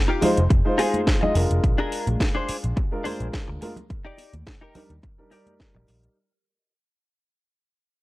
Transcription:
0.08 0.29 D#4 medium
0.08 0.30 F4 medium
0.08 0.30 G4 loud
0.21 0.37 G#3 loud
0.21 0.37 D#4 medium
0.21 0.37 F4 medium
0.21 0.37 C5 loud
0.21 muted picked electric bass stroke soft
0.21 open hi-hat loud
0.21 high bongo soft
0.21 low conga medium
0.37 0.46 F1 medium
0.37 closed hi-hat medium
0.50 0.59 F1 medium
0.50 muted clean electric guitar stroke soft
0.50 kick loud
0.50 closed hi-hat medium
0.65 0.75 G#3 medium
0.65 0.75 D#4 medium
0.65 0.75 F4 medium
0.65 0.76 C5 loud
0.78 1.18 G#3 medium
0.78 1.00 D#4 loud
0.78 1.18 D#4 medium
0.78 1.18 F4 medium
0.78 1.00 F4 loud
0.78 1.01 G#4 loud
0.78 1.19 C5 medium
0.78 open hi-hat loud
0.78 high bongo medium
0.94 closed hi-hat medium
0.94 high conga medium
1.07 kick loud
1.07 snare loud
1.07 closed hi-hat medium
1.21 1.32 G#3 medium
1.21 1.32 D#4 medium
1.21 1.32 F4 medium
1.21 1.32 D#5 loud
1.21 muted clean electric guitar stroke medium
1.21 high bongo soft
1.21 low conga medium
1.34 1.44 F1 loud
1.34 2.88 G#3 medium
1.34 2.88 D4 medium
1.34 2.88 F4 medium
1.34 2.89 A#4 medium
1.34 muted clean electric guitar stroke soft
1.34 open hi-hat loud
1.50 1.58 F1 medium
1.50 closed hi-hat medium
1.64 1.73 A#1 medium
1.64 kick loud
1.64 closed hi-hat medium
1.78 2.07 D4 loud
1.78 2.07 G#4 loud
1.78 2.08 A#4 loud
1.78 high bongo medium
1.92 open hi-hat loud
2.07 2.15 A#1 medium
2.07 closed hi-hat medium
2.07 high conga medium
2.20 kick loud
2.20 snare loud
2.20 closed hi-hat soft
2.20 high bongo soft
2.35 2.56 D4 medium
2.35 2.56 G#4 medium
2.35 2.57 C5 loud
2.49 muted picked electric bass stroke soft
2.49 open hi-hat loud
2.64 2.72 A#1 medium
2.64 closed hi-hat medium
2.76 muted clean electric guitar stroke soft
2.76 kick loud
2.76 closed hi-hat soft
2.76 high bongo medium
2.91 3.02 G#3 medium
2.91 3.02 D4 medium
2.91 3.02 F4 medium
2.91 3.02 A#4 medium
3.04 3.58 G#3 medium
3.04 3.26 D4 loud
3.04 3.59 D4 medium
3.04 3.27 G#4 loud
3.04 3.59 A#4 medium
3.04 3.27 C5 loud
3.04 open hi-hat loud
3.04 high conga medium
3.20 3.28 A#1 medium
3.20 closed hi-hat medium
3.20 high bongo soft
3.33 kick loud
3.33 snare loud
3.33 closed hi-hat soft
3.48 3.57 D2 medium
3.48 muted clean electric guitar stroke medium
3.61 3.71 G#3 medium
3.61 3.71 D4 medium
3.61 3.71 F4 medium
3.61 3.72 A#4 loud
3.61 muted clean electric guitar stroke soft
3.61 open hi-hat loud
3.61 high conga medium
3.76 closed hi-hat medium
3.76 high bongo medium
3.76 low conga medium
3.90 kick loud
3.90 closed hi-hat soft
4.05 4.33 D#4 loud
4.05 4.34 G4 loud
4.05 4.34 D5 loud
4.18 open hi-hat loud
4.18 high bongo soft
4.33 4.42 D#2 medium
4.33 closed hi-hat medium
4.33 high conga medium
4.47 kick loud
4.47 snare loud
4.47 closed hi-hat soft
4.61 4.82 D#4 medium
4.61 4.83 G4 medium
4.61 4.83 A#4 medium
4.75 4.90 G3 medium
4.75 4.90 D4 medium
4.75 4.90 D#4 medium
4.75 4.91 A#4 loud
4.75 muted picked electric bass stroke soft
4.75 open hi-hat loud
4.75 high bongo medium
4.75 low conga medium
4.90 4.98 D#2 medium
4.90 closed hi-hat medium
5.03 muted clean electric guitar stroke soft
5.03 kick loud
5.03 closed hi-hat soft
5.03 low conga medium
5.18 5.28 G3 medium
5.18 5.28 D4 medium
5.18 5.29 D#4 medium
5.18 5.29 A#4 loud
5.18 high bongo soft
5.31 6.14 G3 medium
5.31 5.53 D#4 loud
5.31 6.15 D#4 medium
5.31 5.53 G4 loud
5.31 6.15 A#4 medium
5.31 6.15 D5 medium
5.31 5.54 D5 loud
5.31 open hi-hat medium
5.47 closed hi-hat medium
5.47 high conga medium
5.60 kick loud
5.60 snare loud
5.60 closed hi-hat soft
5.74 5.83 A#1 medium
5.74 muted clean electric guitar stroke medium
5.74 high bongo medium
5.74 low conga medium
5.88 6.06 A#1 medium
5.88 muted clean electric guitar stroke soft
5.88 open hi-hat medium
6.03 closed hi-hat medium

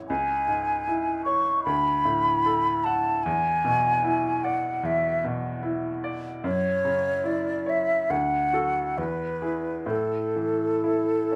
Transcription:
0.00 0.12 A1 soft
0.00 0.11 E2 soft
0.00 0.11 E4 soft
0.00 0.11 C#5 soft
0.09 1.62 C#2 soft
0.09 1.22 G#5 medium
0.48 1.10 G#2 soft
0.88 1.50 E4 soft
1.25 1.65 C#5 soft
1.25 1.63 C#6 medium
1.64 3.22 D2 medium
1.64 2.86 B5 medium
2.05 2.69 A2 soft
2.46 3.10 A4 soft
2.84 3.26 F#5 soft
2.84 3.25 A5 medium
3.24 4.80 E2 medium
3.24 4.46 G#5 medium
3.65 4.28 B2 soft
4.04 4.68 E4 soft
4.44 5.08 D5 soft
4.44 4.87 F#5 medium
4.83 6.41 E2 soft
4.83 5.24 E5 medium
5.24 5.88 B2 soft
5.63 6.28 E4 soft
6.04 6.45 D5 soft
6.44 8.06 F#2 medium
6.44 7.28 C#5 medium
6.85 7.51 C#3 soft
7.24 7.92 E4 soft
7.24 7.71 D5 medium
7.66 8.10 C#5 soft
7.66 8.12 E5 medium
8.10 8.94 D2 medium
8.10 8.99 F#5 medium
8.53 8.93 F#4 soft
8.53 8.94 A4 soft
8.98 9.87 E2 soft
8.98 9.92 B4 medium
9.42 9.85 E4 soft
9.42 9.85 G#4 soft
9.86 11.36 A2 soft
9.90 11.36 A4 medium
10.36 11.12 E3 soft
10.84 11.36 E4 soft
11.31 11.36 C#4 soft

